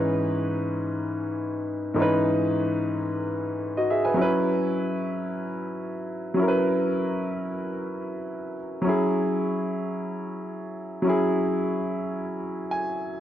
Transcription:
0.00 1.92 G#2 medium
0.00 1.93 E3 medium
0.00 1.93 C#4 medium
0.00 1.94 D#4 medium
0.00 1.95 B4 medium
1.94 4.12 G#2 medium
1.94 4.13 E3 medium
1.94 4.14 C#4 medium
2.00 4.15 D#4 medium
2.00 3.34 B4 medium
3.77 3.90 F#4 medium
3.77 3.89 D#5 medium
3.90 4.04 G#4 medium
3.90 4.04 E5 medium
4.05 4.20 B4 medium
4.05 4.30 G#5 medium
4.14 6.32 F#3 medium
4.14 6.33 C#4 medium
4.19 6.34 E4 medium
4.19 6.35 B4 medium
6.34 8.52 F#3 medium
6.34 8.53 C#4 medium
6.39 8.54 E4 medium
6.39 6.46 A#4 medium
6.48 8.59 B4 medium
8.82 11.00 F#3 medium
8.82 11.01 C#4 medium
8.87 11.02 E4 medium
8.87 11.03 G#4 medium
11.02 13.20 F#3 medium
11.02 13.20 C#4 medium
11.07 13.20 E4 medium
11.07 13.20 G#4 medium
12.71 13.20 G#5 medium

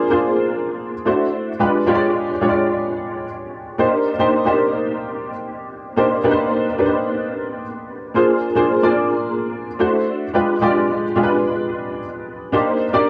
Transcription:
0.00 0.10 A#3 medium
0.00 0.10 D4 medium
0.00 0.10 F4 medium
0.00 0.10 G#4 medium
0.00 0.11 C5 medium
0.10 0.93 A#3 medium
0.10 0.93 D4 medium
0.10 0.93 F4 medium
0.10 0.93 G#4 medium
0.10 0.94 C5 medium
1.05 1.49 A3 medium
1.05 1.49 D4 medium
1.05 1.49 E4 medium
1.05 1.50 F#4 medium
1.05 1.50 C5 medium
1.59 1.81 G#3 medium
1.59 1.81 D4 medium
1.59 1.81 F4 medium
1.59 1.81 G4 medium
1.59 1.81 B4 medium
1.86 2.29 G#3 medium
1.86 2.29 D4 medium
1.86 2.29 F4 medium
1.86 2.29 G4 medium
1.86 1.94 C#5 medium
1.94 2.33 D5 medium
2.41 3.25 G#3 medium
2.41 3.25 D4 medium
2.41 3.25 F4 medium
2.41 3.25 G4 medium
2.41 2.49 C#5 medium
2.49 3.28 D5 medium
3.78 4.09 A#3 medium
3.78 4.10 D4 medium
3.78 4.10 D#4 medium
3.78 4.10 G4 medium
3.78 4.10 C5 medium
4.18 4.40 A#3 medium
4.18 4.40 D4 medium
4.18 4.40 D#4 medium
4.18 4.40 G4 medium
4.18 4.40 C5 medium
4.45 5.29 A#3 medium
4.45 5.29 D4 medium
4.45 5.29 D#4 medium
4.45 5.29 G4 medium
4.45 5.30 C5 medium
5.96 6.17 A#3 medium
5.96 6.17 D4 medium
5.96 6.18 D#4 medium
5.96 6.18 G4 medium
5.96 6.18 C5 medium
6.23 6.65 A#3 medium
6.23 6.65 D4 medium
6.23 6.66 D#4 medium
6.23 6.66 G4 medium
6.23 6.31 B4 medium
6.31 6.69 C5 medium
6.78 7.61 A#3 medium
6.78 7.62 D4 medium
6.78 7.62 D#4 medium
6.78 7.62 G4 medium
6.78 6.85 B4 medium
6.86 7.65 C5 medium
8.14 8.46 A#3 medium
8.14 8.46 D4 medium
8.14 8.46 F4 medium
8.14 8.47 G#4 medium
8.14 8.47 C5 medium
8.55 8.77 A#3 medium
8.55 8.77 D4 medium
8.55 8.77 F4 medium
8.55 8.77 G#4 medium
8.55 8.77 C5 medium
8.82 9.66 A#3 medium
8.82 9.66 D4 medium
8.82 9.66 F4 medium
8.82 9.67 G#4 medium
8.82 9.67 D5 medium
9.79 10.23 A3 medium
9.79 10.23 D4 medium
9.79 10.23 E4 medium
9.79 10.23 F#4 medium
9.79 10.23 C5 medium
10.33 10.54 G#3 medium
10.33 10.55 D4 medium
10.33 10.55 F4 medium
10.33 10.55 G4 medium
10.33 10.55 B4 medium
10.61 11.03 G#3 medium
10.61 11.03 D4 medium
10.61 11.03 F4 medium
10.61 11.03 G4 medium
10.61 11.03 D5 medium
11.16 11.99 G#3 medium
11.16 11.99 D4 medium
11.16 11.99 F4 medium
11.16 11.99 G4 medium
11.16 11.23 G#4 medium
11.23 12.03 B4 medium
12.52 12.84 A#3 medium
12.52 12.84 D4 medium
12.52 12.84 D#4 medium
12.52 12.84 G4 medium
12.52 12.84 C5 medium
12.93 13.10 A#3 medium
12.93 13.10 D4 medium
12.93 13.10 D#4 medium
12.93 13.10 G4 medium
12.93 13.10 D5 medium

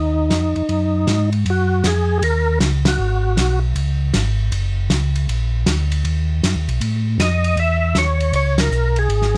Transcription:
0.00 0.30 D#2 medium
0.00 1.30 D#4 medium
0.30 0.54 F2 medium
0.30 snare medium
0.30 hi-hat pedal soft
0.30 ride medium
0.56 0.63 F2 soft
0.56 ride soft
0.69 1.06 F#2 medium
0.69 ride soft
1.07 1.45 G#2 medium
1.07 snare medium
1.07 hi-hat pedal medium
1.07 ride medium
1.32 ride soft
1.46 1.83 F#2 medium
1.46 ride medium
1.50 1.87 F#4 medium
1.84 2.21 F2 medium
1.84 2.18 G#4 medium
1.84 snare medium
1.84 hi-hat pedal medium
1.84 ride medium
2.19 2.59 D#2 medium
2.19 2.23 G#4 medium
2.19 ride medium
2.24 2.59 A#4 loud
2.60 2.98 C#2 medium
2.60 snare medium
2.60 hi-hat pedal medium
2.60 ride medium
2.85 3.59 F#4 medium
2.85 snare medium
2.85 ride medium
2.99 3.36 G#1 medium
3.37 3.74 B1 medium
3.37 snare medium
3.37 hi-hat pedal medium
3.37 ride medium
3.75 4.13 C#2 medium
3.75 ride medium
4.13 4.51 G#1 medium
4.13 snare medium
4.13 hi-hat pedal medium
4.13 ride medium
4.52 4.89 F#1 medium
4.52 ride medium
4.90 5.27 C#2 medium
4.90 snare medium
4.90 hi-hat pedal medium
4.90 ride medium
5.16 ride soft
5.28 5.65 A#1 medium
5.28 ride medium
5.66 6.04 D2 medium
5.66 snare medium
5.66 hi-hat pedal medium
5.66 ride medium
5.92 ride medium
6.04 6.42 D#2 medium
6.04 ride medium
6.43 6.55 F#2 medium
6.43 snare medium
6.43 hi-hat pedal medium
6.43 ride medium
6.55 6.68 D#2 medium
6.68 6.80 B1 medium
6.68 ride soft
6.80 7.18 A2 medium
6.80 ride medium
7.18 7.56 F2 loud
7.18 7.59 D#5 medium
7.18 snare medium
7.18 hi-hat pedal medium
7.18 ride medium
7.44 ride medium
7.56 7.94 E2 medium
7.56 7.98 E5 loud
7.56 ride medium
7.94 8.32 D#2 medium
7.94 8.34 C#5 medium
7.94 snare medium
7.94 hi-hat pedal medium
7.94 ride medium
8.20 ride soft
8.32 8.70 C#2 medium
8.32 8.60 C#5 loud
8.32 ride medium
8.58 8.99 A#4 medium
8.58 snare medium
8.58 ride medium
8.71 9.08 B1 medium
8.71 hi-hat pedal medium
8.96 9.37 G#4 medium
8.96 ride soft
9.09 9.37 G#1 medium
9.09 ride medium
9.22 snare soft

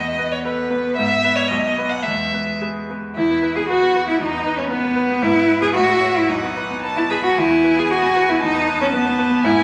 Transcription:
0.00 0.94 E2 soft
0.00 2.06 B3 soft
0.00 0.33 D#5 medium
0.19 0.42 B3 soft
0.19 0.42 B4 soft
0.32 0.43 C#5 medium
0.44 0.68 A4 soft
0.44 0.95 B4 medium
0.44 0.68 B4 soft
0.70 0.94 B3 soft
0.70 0.94 B4 soft
0.96 1.49 G#2 medium
0.96 1.37 E5 medium
1.24 1.48 B3 soft
1.24 1.48 B4 soft
1.36 1.50 C#5 medium
1.48 2.04 B1 medium
1.48 1.90 D#5 medium
1.78 2.02 B3 soft
1.78 2.03 B4 soft
1.89 2.05 F#5 medium
2.03 3.13 E2 soft
2.03 2.95 G#3 soft
2.03 2.60 E5 medium
2.34 2.58 B3 soft
2.34 2.59 B4 soft
2.62 2.86 G#4 soft
2.62 2.86 B4 soft
2.90 3.14 B3 soft
2.90 3.14 B4 soft
3.16 4.18 E2 medium
3.16 3.53 E4 medium
3.16 3.57 E4 medium
3.30 3.51 B3 soft
3.43 3.64 B4 soft
3.56 3.77 B3 soft
3.56 3.61 G#4 medium
3.56 3.68 G#4 medium
3.68 4.09 F#4 medium
3.68 4.07 F#4 medium
3.68 3.90 B4 soft
3.82 4.03 B3 soft
3.96 4.15 B4 soft
4.07 4.20 B3 soft
4.07 4.19 E4 medium
4.07 4.20 E4 medium
4.19 5.20 E2 medium
4.19 4.59 D#4 medium
4.33 4.54 B3 soft
4.46 4.66 B4 soft
4.58 4.79 B3 soft
4.58 4.69 C#4 medium
4.58 4.70 C#4 medium
4.70 5.21 B3 medium
4.70 5.24 B3 medium
4.70 4.92 B4 medium
4.84 5.05 B3 soft
4.96 5.17 B4 medium
5.10 5.23 B3 soft
5.22 5.73 G#2 medium
5.22 5.61 E4 medium
5.22 5.77 B4 medium
5.37 5.57 B3 medium
5.48 5.69 B4 medium
5.61 5.75 B3 medium
5.61 5.67 G#4 medium
5.74 6.26 A2 medium
5.74 6.18 F#4 medium
5.74 6.31 E5 medium
5.88 6.10 E4 medium
6.01 6.23 C#5 medium
6.14 6.28 E4 soft
6.14 6.30 E4 medium
6.29 7.33 B1 medium
6.29 6.83 D#4 medium
6.29 6.78 F#5 soft
6.43 6.64 B3 soft
6.57 6.78 B4 soft
6.70 6.91 B3 soft
6.82 7.05 B4 soft
6.82 7.11 A5 medium
6.96 7.18 B3 soft
6.96 7.02 E4 medium
7.10 7.16 G#4 medium
7.10 7.32 B4 soft
7.10 7.34 B5 medium
7.24 7.37 B3 soft
7.24 7.40 F#4 medium
7.35 8.39 E2 medium
7.35 7.80 E4 medium
7.35 8.42 G#5 medium
7.50 7.72 B3 soft
7.64 7.85 B4 soft
7.76 7.98 B3 soft
7.76 7.92 G#4 medium
7.90 8.31 F#4 medium
7.90 8.11 B4 soft
8.03 8.23 B3 medium
8.16 8.36 B4 medium
8.29 8.42 B3 medium
8.29 8.41 E4 medium
8.40 9.42 E2 medium
8.40 8.80 D#4 medium
8.40 9.42 A5 medium
8.55 8.75 B3 medium
8.68 8.88 B4 medium
8.80 9.01 B3 medium
8.80 8.86 C#4 medium
8.94 9.46 B3 medium
8.94 9.14 B4 medium
9.06 9.26 B3 medium
9.19 9.39 B4 medium
9.31 9.44 B3 medium
9.43 9.63 G#2 medium
9.43 9.63 E4 medium
9.43 9.63 G#5 medium
9.58 9.63 B3 medium

